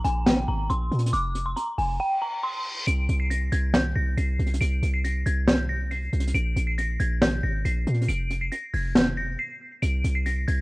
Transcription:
0.04 A#1 G#5, closed hi-hat
0.26 G5, snare, closed hi-hat
0.48 G#1 A#5
0.69 A#1 C6, closed hi-hat
0.91 A#2, closed hi-hat
0.99 closed hi-hat
1.06 closed hi-hat
1.13 F1 D6, closed hi-hat
1.35 closed hi-hat
1.46 C6
1.56 A#5, closed hi-hat
1.78 F1 G#5, open hi-hat
2.00 G5, reverse cymbal
2.22 A#5
2.43 C6
2.87 C2 D7, closed hi-hat
3.09 C2, closed hi-hat
3.20 C7
3.30 A#6, closed hi-hat
3.52 C2 G#6, closed hi-hat
3.74 G6, snare, closed hi-hat
3.96 C2 A#6
4.17 C2 C7, closed hi-hat
4.39 C2, closed hi-hat
4.46 closed hi-hat
4.54 closed hi-hat
4.61 C2 D7, closed hi-hat
4.83 C2, closed hi-hat
4.94 C7
5.04 A#6, closed hi-hat
5.26 C2 G#6, closed hi-hat
5.48 G6, snare, closed hi-hat
5.69 A#6
5.91 C7, closed hi-hat
6.13 C2, closed hi-hat
6.20 closed hi-hat
6.28 closed hi-hat
6.35 A#1 D7, closed hi-hat
6.56 A#1, closed hi-hat
6.67 C7
6.78 A#6, closed hi-hat
7.00 A#1 G#6, closed hi-hat
7.22 G6, snare, closed hi-hat
7.43 G#1 A#6
7.65 A#1 C7, closed hi-hat
7.87 A#2, closed hi-hat
7.94 closed hi-hat
8.01 closed hi-hat
8.08 F1 D7, closed hi-hat
8.30 closed hi-hat
8.41 C7
8.52 A#6, closed hi-hat
8.74 F1 G#6, open hi-hat
8.95 G6, snare, closed hi-hat
9.17 A#6
9.39 C7
9.82 C2 D7, closed hi-hat
10.04 C2, closed hi-hat
10.15 C7
10.26 A#6, closed hi-hat
10.48 C2 G#6, closed hi-hat

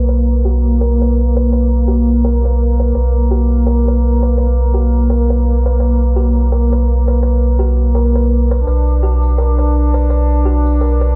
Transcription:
Already playing: B1 A#3
0.09 B4
0.45 F#4
0.81 A#4
1.02 B4
1.37 B4
1.53 B4
1.88 F#4
2.25 A#4
2.45 B4
2.80 B4
2.95 B1 B4
3.31 F#4
3.67 A#4
3.88 B4
4.23 B4
4.38 B4
4.74 F#4
5.10 A#4
5.30 B4
5.66 B4
5.80 B4
6.16 F#4
6.52 A#4
6.72 B4
7.08 B4
7.23 B4
7.59 F#4
7.95 A#4
8.16 B4
8.51 B4
8.67 B1 D4 B4, tambourine
8.87 tambourine
9.03 F#4
9.23 tambourine
9.38 A#4, tambourine
9.58 B4, tambourine
9.94 B4, tambourine, triangle
10.09 B4, tambourine
10.30 tambourine
10.45 F#4
10.67 tambourine
10.81 A#4, tambourine
11.00 B4, tambourine, triangle

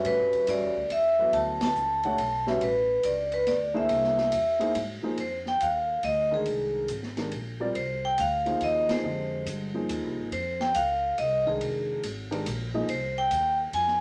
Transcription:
Already playing: G3 C#4 F#4 B4 E5
0.05 A2 B4, ride
0.19 G2
0.33 E2, ride
0.47 G2 G3 C#4 F#4 B4 D5 E5, hi-hat pedal, ride
0.62 E2
0.76 D2
0.90 E2 E5, ride
1.19 F#3 B3 E4 A4 B4
1.33 D2 A5, ride
1.61 A5, snare, ride
1.75 C#2, hi-hat pedal
2.03 A3 D4 G4 C#5 F#5, kick, ride
2.18 B1, ride
2.47 G3 C#4 F#4 B4 E5, snare
2.61 A1 B4, ride
3.03 C#2 D5, hi-hat pedal, ride
3.32 B4, ride
3.47 D2 D5, snare, ride
3.74 A#3 D4 E4 G#4 C5 E5, kick
3.89 C2, ride
4.04 snare
4.17 snare
4.32 E2, hi-hat pedal, ride
4.59 A#3 D#4 E4 G#4 C5, ride
4.75 G#2, ride
5.03 F3 A#3 D#4 G#4 C5, muted upright bass stroke
5.18 F2 C5, ride
5.46 G5, snare
5.60 D#2 F5, hi-hat pedal, ride
6.03 D2 D#5, ride
6.31 D#3 G#3 D4 G#4 A#4 G5
6.46 C2, ride
6.88 G#1, hi-hat pedal, ride
7.03 snare
7.17 D#3 G#3 D4 G4 A#4, snare, ride
7.32 A#1, ride
7.60 G3 C4 F4 A#4 D5
7.75 C2 C5, ride
8.05 G5
8.18 D2 F5, hi-hat pedal, ride
8.46 F3 A#3 D#4 G#4 C5, ride
8.61 D#2 D#5, ride
8.89 F3 A#3 D#4 G#4 C5, snare, ride
9.04 F2 D3 G#3 G4 C5 D#5
9.46 G2, hi-hat pedal, ride
9.74 F3 A#3 D#4 G#4 C5
9.89 D#2, hi-hat pedal, ride
10.04 C2
10.17 G#1
10.32 F2 C5, ride
10.60 G5, snare
10.74 C#2 F5, hi-hat pedal, ride
11.18 C2 D#5, ride
11.46 D#3 G#3 D4 G#4 A#4 G5, kick
11.61 F1, ride
12.03 G#1, hi-hat pedal, ride
12.31 D#3 G#3 D4 G4 A#4, ride
12.46 A#1, hi-hat pedal, ride
12.74 F3 A#3 D#4 G#4 D#5
12.88 C2 C5, ride
13.18 G5
13.31 D#2, hi-hat pedal, ride
13.73 F2 G#5, ride
13.87 snare

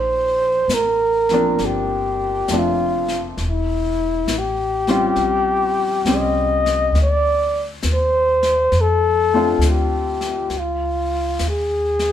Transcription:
Already playing: A#1 D#4 C5
0.68 A1, snare, hi-hat pedal
0.74 A#4
1.29 F3 A#3 C4, snare
1.34 D4
1.59 G1, brush sweep, snare
1.65 G4
2.48 F1 F3 A3 C4, snare, hi-hat pedal
2.53 D4
2.58 F4
3.08 snare
3.38 E1, brush sweep, snare
3.48 E4
4.27 A1, snare, hi-hat pedal
4.38 G4
4.87 G3 C4 C#4 F4, snare
5.16 A#1, brush sweep, snare
6.05 C2 G3 C4 C#4 G4, snare, hi-hat pedal
6.15 D#5
6.66 snare
6.93 D2, brush sweep, snare
7.02 D5
7.83 D#2, snare, hi-hat pedal
7.93 C5
8.43 snare
8.72 F2, brush sweep, snare
8.81 A4
9.34 A3 C4 D4 F4
9.59 D2, snare, hi-hat pedal
9.70 G4
10.21 snare
10.50 C#2, brush sweep, snare
10.58 F4
11.39 D#2, snare, hi-hat pedal
11.49 G#4
11.99 snare

